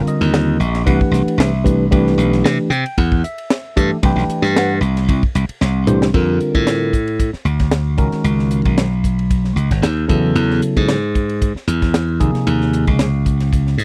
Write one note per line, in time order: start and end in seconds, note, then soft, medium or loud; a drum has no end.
0.00 0.58 D3 medium
0.00 0.58 G3 medium
0.00 0.58 C4 medium
0.00 0.58 F4 medium
0.00 0.58 A#4 medium
0.07 0.83 D#5 medium
0.07 hi-hat pedal medium
0.07 ride medium
0.21 0.57 D#2 medium
0.21 snare soft
0.21 ride medium
0.34 snare loud
0.34 ride medium
0.60 0.84 A#1 medium
0.60 hi-hat pedal medium
0.60 ride medium
0.75 snare soft
0.75 ride medium
0.86 0.99 C2 loud
0.86 1.50 E3 medium
0.86 1.50 A3 medium
0.86 1.50 D4 medium
0.86 1.50 G4 medium
0.86 1.50 B4 medium
0.86 1.36 F#5 loud
0.86 kick medium
0.86 ride medium
1.01 kick medium
1.11 1.25 C2 medium
1.11 snare soft
1.11 hi-hat pedal medium
1.11 ride medium
1.28 ride medium
1.38 1.87 C2 medium
1.38 1.65 E5 medium
1.38 snare loud
1.38 ride medium
1.64 1.84 E3 medium
1.64 1.85 A3 medium
1.64 1.84 D4 medium
1.64 1.85 G4 medium
1.64 1.85 B4 medium
1.64 kick medium
1.64 hi-hat pedal medium
1.64 ride medium
1.91 2.16 C2 loud
1.91 2.68 E3 medium
1.91 2.68 A3 medium
1.91 2.68 D4 medium
1.91 2.68 G4 medium
1.91 2.68 B4 medium
1.91 kick loud
1.91 ride medium
2.07 snare soft
2.18 2.42 B1 medium
2.18 hi-hat pedal medium
2.18 ride medium
2.33 snare soft
2.33 ride medium
2.44 2.57 C3 medium
2.44 snare loud
2.44 ride medium
2.70 2.84 C3 medium
2.70 2.96 G5 loud
2.70 hi-hat pedal medium
2.70 ride medium
2.86 ride medium
2.98 3.22 E2 medium
2.98 3.23 F#5 medium
2.98 kick medium
2.98 ride medium
3.12 kick medium
3.24 3.99 E5 medium
3.24 hi-hat pedal medium
3.24 ride medium
3.38 ride medium
3.50 snare loud
3.50 ride medium
3.76 3.90 G2 medium
3.76 3.96 E3 medium
3.76 3.96 A3 medium
3.76 3.96 D4 medium
3.76 3.96 G4 medium
3.76 3.96 A4 medium
3.76 kick medium
3.76 hi-hat pedal medium
3.76 ride medium
4.03 4.15 C2 loud
4.03 4.80 E3 medium
4.03 4.79 A3 medium
4.03 4.79 D4 medium
4.03 4.79 G4 medium
4.03 4.80 B4 medium
4.03 4.53 G5 medium
4.03 kick loud
4.03 ride medium
4.16 4.27 B1 medium
4.16 snare soft
4.28 muted slap bass stroke soft
4.28 hi-hat pedal medium
4.28 ride medium
4.42 4.78 G2 medium
4.42 snare soft
4.42 ride medium
4.56 4.73 F#5 medium
4.56 snare loud
4.56 ride medium
4.81 5.06 C2 medium
4.81 hi-hat pedal medium
4.81 ride medium
4.97 snare soft
4.97 ride medium
5.08 5.21 C2 loud
5.08 kick medium
5.08 ride medium
5.23 kick medium
5.35 5.48 C2 medium
5.35 hi-hat pedal medium
5.35 ride medium
5.49 muted slap bass stroke soft
5.49 ride medium
5.61 6.10 C2 medium
5.61 snare medium
5.87 6.07 E3 medium
5.87 6.07 A3 medium
5.87 6.07 D4 medium
5.87 6.07 G4 medium
5.87 6.07 C5 loud
5.87 hi-hat pedal medium
5.87 mid tom medium
6.02 snare medium
6.14 6.38 F2 medium
6.14 6.90 D3 medium
6.14 6.90 G3 medium
6.14 6.90 C4 medium
6.14 6.91 F4 medium
6.14 6.90 A#4 medium
6.14 kick loud
6.14 crash medium
6.40 hi-hat pedal medium
6.40 ride medium
6.55 7.30 A2 medium
6.55 kick medium
6.55 ride medium
6.67 snare loud
6.67 hi-hat pedal medium
6.67 ride medium
6.93 kick medium
6.93 hi-hat pedal medium
6.93 ride medium
7.08 ride medium
7.20 kick medium
7.20 hi-hat pedal medium
7.20 ride medium
7.33 muted slap bass stroke soft
7.33 snare soft
7.45 7.98 D2 medium
7.45 hi-hat pedal medium
7.45 ride medium
7.59 kick medium
7.59 snare soft
7.59 ride medium
7.71 snare loud
7.71 hi-hat pedal medium
7.71 ride medium
7.98 8.11 C#2 medium
7.98 8.83 D#3 medium
7.98 8.83 G#3 medium
7.98 8.83 C#4 medium
7.98 8.83 F#4 medium
7.98 8.83 A#4 medium
7.98 kick medium
7.98 hi-hat pedal medium
7.98 ride medium
8.12 muted slap bass stroke soft
8.12 snare soft
8.12 ride medium
8.24 8.62 C#2 medium
8.24 hi-hat pedal medium
8.24 ride medium
8.39 snare soft
8.51 hi-hat pedal medium
8.51 ride medium
8.65 9.53 B1 medium
8.65 kick medium
8.65 ride medium
8.78 snare loud
8.78 hi-hat pedal medium
8.78 ride medium
9.04 kick medium
9.04 hi-hat pedal medium
9.04 ride medium
9.19 ride medium
9.30 kick medium
9.30 hi-hat pedal medium
9.30 ride medium
9.45 snare soft
9.56 9.69 C#2 medium
9.56 hi-hat pedal medium
9.56 ride medium
9.71 9.82 G#1 medium
9.71 kick medium
9.71 snare soft
9.71 ride medium
9.82 10.07 D#2 medium
9.82 snare loud
9.82 hi-hat pedal medium
9.82 ride medium
10.08 10.34 E2 medium
10.08 10.94 C#3 medium
10.08 10.94 F#3 medium
10.08 10.94 B3 medium
10.08 10.94 E4 medium
10.08 10.94 A4 medium
10.08 kick medium
10.08 hi-hat pedal medium
10.08 ride medium
10.35 10.60 E2 medium
10.35 hi-hat pedal medium
10.35 ride medium
10.51 snare soft
10.62 hi-hat pedal medium
10.62 ride medium
10.77 11.52 G#2 medium
10.77 kick medium
10.77 ride medium
10.89 snare loud
10.89 hi-hat pedal medium
10.89 ride medium
11.15 kick medium
11.15 hi-hat pedal medium
11.15 ride medium
11.29 ride medium
11.42 kick medium
11.42 hi-hat pedal medium
11.42 ride medium
11.55 muted slap bass stroke soft
11.55 snare soft
11.67 12.21 E2 medium
11.67 hi-hat pedal medium
11.67 ride medium
11.82 kick medium
11.82 snare soft
11.82 ride medium
11.94 snare loud
11.94 hi-hat pedal medium
11.94 ride medium
12.20 12.34 D#2 medium
12.20 13.05 C3 medium
12.20 13.05 F3 medium
12.20 13.05 A#3 medium
12.20 13.05 D#4 medium
12.20 13.05 G#4 medium
12.20 kick medium
12.20 hi-hat pedal medium
12.20 ride medium
12.34 muted slap bass stroke soft
12.34 snare soft
12.34 ride medium
12.47 12.85 D#2 medium
12.47 hi-hat pedal medium
12.47 ride medium
12.61 snare soft
12.73 hi-hat pedal medium
12.73 ride medium
12.87 13.75 C#2 medium
12.87 kick medium
12.87 ride medium
12.99 snare loud
12.99 hi-hat pedal medium
12.99 ride medium
13.26 kick medium
13.26 hi-hat pedal medium
13.26 ride medium
13.40 snare soft
13.40 ride medium
13.53 kick medium
13.53 hi-hat pedal medium
13.53 ride medium
13.67 snare soft
13.78 13.84 G#2 medium
13.78 hi-hat pedal medium
13.78 ride medium